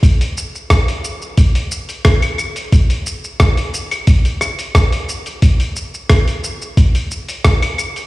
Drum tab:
HH |oo--oo--oo-ooo-o|oo--oo-ooo-ooo-o|oo--oo--oo-ooo-o|
SH |xxxxxxxxxxxxxxxx|xxxxxxxxxxxxxxxx|xxxxxxxxxxxxxxxx|
CL |-------------xx-|-------x--x-----|-------------xx-|
SD |----r-------r---|----r-----r-r---|----r-------r---|
BD |o---o---o---o---|o---o---o---o---|o---o---o---o---|